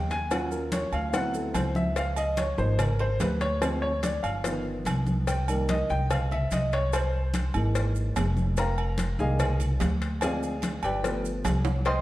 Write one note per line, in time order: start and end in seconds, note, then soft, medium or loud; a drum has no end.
0.00 0.87 D#2 loud
0.00 0.11 G5 medium
0.10 0.31 G#5 loud
0.10 cowbell medium
0.10 high conga soft
0.10 maracas soft
0.31 1.10 F#3 medium
0.31 1.10 C#4 medium
0.31 1.11 F4 medium
0.31 0.52 F#5 medium
0.31 cowbell loud
0.31 high conga soft
0.31 low agogo loud
0.31 maracas medium
0.51 0.72 A#4 medium
0.51 high conga soft
0.51 maracas medium
0.72 0.93 C#5 medium
0.72 cowbell medium
0.72 high conga medium
0.72 low agogo medium
0.72 maracas medium
0.92 1.51 D2 medium
0.92 1.08 F5 medium
0.92 high conga soft
0.92 low agogo medium
0.92 maracas soft
1.10 1.92 F#3 medium
1.10 1.93 B3 medium
1.10 1.93 C4 medium
1.10 1.12 F5 medium
1.10 high conga soft
1.10 maracas medium
1.14 1.93 E4 medium
1.14 1.34 F#5 loud
1.14 cowbell loud
1.34 1.55 A4 medium
1.34 high conga soft
1.34 maracas medium
1.54 2.52 C#2 loud
1.54 1.75 C5 medium
1.54 cowbell medium
1.54 high conga medium
1.54 low agogo loud
1.54 maracas medium
1.75 1.96 E5 medium
1.75 high conga medium
1.75 maracas soft
1.96 2.17 F5 loud
1.96 cowbell loud
1.96 high conga soft
1.96 low agogo medium
1.96 maracas medium
2.16 2.37 D#5 medium
2.16 high conga soft
2.16 low agogo loud
2.16 maracas medium
2.37 2.58 C#5 medium
2.37 cowbell medium
2.37 high conga loud
2.37 maracas medium
2.58 3.16 G#1 loud
2.58 2.86 F3 medium
2.58 2.86 A#3 medium
2.58 2.87 D#4 medium
2.58 2.79 C5 medium
2.58 high conga soft
2.58 maracas soft
2.79 3.00 A#4 medium
2.79 cowbell loud
2.79 high conga soft
2.79 low conga medium
2.79 low agogo loud
2.79 maracas medium
2.99 3.20 C5 loud
2.99 high conga soft
2.99 low agogo medium
3.20 4.18 D2 loud
3.20 3.41 B4 medium
3.20 cowbell medium
3.20 high conga medium
3.20 low timbale medium
3.20 low agogo medium
3.20 maracas medium
3.41 3.62 C#5 loud
3.41 cowbell medium
3.41 high conga soft
3.41 maracas soft
3.61 3.89 F3 medium
3.61 3.89 G#3 soft
3.61 3.90 C4 medium
3.61 3.82 C5 medium
3.61 cowbell loud
3.61 high conga soft
3.61 low agogo loud
3.61 maracas medium
3.82 4.03 C#5 loud
3.82 high conga soft
4.03 4.24 D5 medium
4.03 cowbell medium
4.03 high conga medium
4.03 low agogo medium
4.03 maracas medium
4.23 4.82 G1 medium
4.23 4.62 F5 medium
4.23 high conga soft
4.23 low agogo loud
4.23 maracas soft
4.44 5.23 D#3 medium
4.44 5.24 F3 medium
4.44 5.24 B3 medium
4.44 cowbell loud
4.44 high conga soft
4.44 maracas medium
4.65 high conga soft
4.85 5.83 C2 loud
4.85 cowbell medium
4.85 high conga medium
4.85 low agogo loud
4.85 maracas medium
5.06 high conga medium
5.06 maracas soft
5.27 5.48 G5 medium
5.27 cowbell loud
5.27 low agogo medium
5.27 maracas medium
5.48 5.76 D#3 medium
5.48 5.76 G3 medium
5.48 5.77 A#3 medium
5.48 5.69 A#4 medium
5.48 high conga soft
5.48 low agogo loud
5.48 maracas medium
5.69 5.90 D#5 medium
5.69 cowbell medium
5.69 high conga loud
5.69 maracas medium
5.90 6.48 C2 medium
5.90 6.10 G5 loud
5.90 high conga soft
5.90 maracas soft
6.10 6.31 F5 medium
6.10 cowbell loud
6.10 high conga soft
6.10 low conga medium
6.10 low agogo loud
6.10 maracas medium
6.31 6.51 E5 medium
6.31 high conga soft
6.31 low conga medium
6.31 low agogo medium
6.51 7.48 C2 loud
6.51 6.72 D#5 medium
6.51 cowbell medium
6.51 high conga medium
6.51 low agogo medium
6.51 maracas medium
6.72 6.93 C#5 medium
6.72 cowbell medium
6.72 high conga soft
6.72 maracas soft
6.93 7.51 C5 medium
6.93 cowbell loud
6.93 high conga soft
6.93 low agogo loud
6.93 maracas medium
7.13 high conga soft
7.34 cowbell medium
7.34 high conga medium
7.34 low agogo medium
7.34 maracas medium
7.54 8.12 G#1 loud
7.54 8.54 E3 medium
7.54 8.54 G#3 soft
7.54 8.54 A#3 medium
7.54 high conga soft
7.54 low agogo loud
7.54 maracas soft
7.75 cowbell loud
7.75 high conga soft
7.75 maracas medium
7.95 high conga soft
7.95 maracas medium
8.16 9.13 F1 loud
8.16 cowbell medium
8.16 high conga medium
8.16 low timbale medium
8.16 low agogo loud
8.16 maracas medium
8.37 high conga medium
8.37 maracas soft
8.57 9.16 A#4 medium
8.57 9.16 F5 medium
8.57 9.16 G5 medium
8.57 9.16 A#5 medium
8.57 cowbell loud
8.57 high conga soft
8.57 low agogo medium
8.57 maracas medium
8.78 high conga soft
8.78 low agogo loud
8.98 cowbell medium
8.98 high conga loud
8.98 maracas medium
9.18 9.77 C2 loud
9.18 9.47 D#3 medium
9.18 9.47 G3 medium
9.18 9.47 G#3 medium
9.18 9.47 A#3 medium
9.18 9.58 G#4 medium
9.18 9.58 D#5 medium
9.18 9.58 F5 medium
9.18 9.58 G#5 medium
9.18 high conga soft
9.18 maracas soft
9.39 cowbell loud
9.39 high conga soft
9.39 low conga medium
9.39 low agogo loud
9.39 maracas medium
9.60 high conga soft
9.60 low conga medium
9.60 low agogo medium
9.60 maracas medium
9.80 10.78 D2 loud
9.80 cowbell medium
9.80 high conga medium
9.80 low timbale medium
9.80 low agogo medium
9.80 maracas medium
10.02 cowbell medium
10.02 high conga soft
10.02 maracas soft
10.21 10.50 F3 medium
10.21 10.50 G#3 medium
10.21 10.50 C4 medium
10.21 10.81 G#4 medium
10.21 10.81 D5 medium
10.21 10.81 F5 medium
10.21 10.80 G#5 medium
10.21 cowbell loud
10.21 high conga soft
10.21 low agogo loud
10.21 maracas medium
10.43 high conga soft
10.43 maracas medium
10.62 cowbell medium
10.62 high conga loud
10.62 low agogo medium
10.62 maracas medium
10.83 11.41 G1 medium
10.83 11.22 G4 medium
10.83 11.22 B4 medium
10.83 11.22 D5 medium
10.83 11.22 G5 loud
10.83 high conga soft
10.83 low agogo loud
10.83 maracas soft
11.03 11.63 F3 medium
11.03 11.63 A3 medium
11.03 11.63 B3 medium
11.03 cowbell loud
11.03 high conga soft
11.03 maracas medium
11.24 high conga soft
11.24 maracas medium
11.44 12.01 C2 loud
11.44 cowbell medium
11.44 high conga medium
11.44 low timbale medium
11.44 low agogo loud
11.44 maracas medium
11.65 high conga medium
11.65 high timbale medium
11.65 maracas soft
11.85 12.01 C5 medium
11.85 12.01 D#5 medium
11.85 12.01 G5 medium
11.85 12.01 C6 loud
11.85 cowbell loud
11.85 low agogo medium